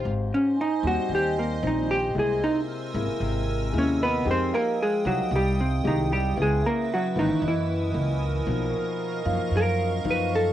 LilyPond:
<<
  \new Staff \with { instrumentName = "Ambient pad" } { \time 4/4 \key aes \major \tempo 4 = 114 << { <c'' ees'' c'''>1 | <bes' gis'' e'''>1 | <g'' ees'''>1 | fes'1 |
<dis'' eis'' cis'''>1 | } \\ { r1 | r1 | r1 | r2 bes'2~ |
bes'1 | } >> }
  \new Staff \with { instrumentName = "Vibraphone" } { \time 4/4 \key aes \major r4 aes''4. r4. | r2. r8 dis''8~ | dis''8 f''4. r2 | r8 fes''4. ees''4. r8 |
r4. eis''4. r4 | }
  \new Staff \with { instrumentName = "Hollow-body jazz guitar" } { \time 4/4 \key aes \major r8 des'8 ees'8 ges'8 g'8 bes8 ees'8 g'8 | gis'8 dis'8 r2 <des' des''>8 <ces' ces''>8 | <c' c''>8 <bes bes'>8 <aes aes'>8 <ges ges'>8 <g g'>8 <c c'>8 <ees ees'>8 <g g'>8 | <aes aes'>8 <bes bes'>8 <ges ges'>8 <ees ees'>8 <fes fes'>2 |
r2 ais'4 b'8 a'8 | }
  \new Staff \with { instrumentName = "Nylon-string guitar" } { \time 4/4 \key aes \major << { <ees' g' c''>4 r8 <g c' ees'>4. <g c' ees'>8 r8 | <gis bes e'>4. <gis bes e'>4. <gis bes e'>8 r8 | <aes ees' g'>4 r8 <aes ees' g'>4. <aes ees' g'>4 | <aes ces' fes'>4 r8 <fes bes>4. <fes bes>4 |
<eis ais dis'>4. <eis ais dis'>4. <eis ais dis'>4 | } \\ { aes,2 ees2 | c2 c2 | f2 c2 | des2 ges,2 |
b,2 fis,2 | } >> }
  \new Staff \with { instrumentName = "Upright bass" } { \clef bass \time 4/4 \key aes \major aes,,8 r4 ees,16 r16 ees,4 bes,,4 | c,8 r4 gis,,16 r16 gis,,4 dis,4 | f,8 r4 c,16 r16 c,4 c,4 | des,8 r4 aes,,16 r16 ges,4 des,4 |
b,,8 r4 fis,16 r16 fis,4 fis,4 | }
>>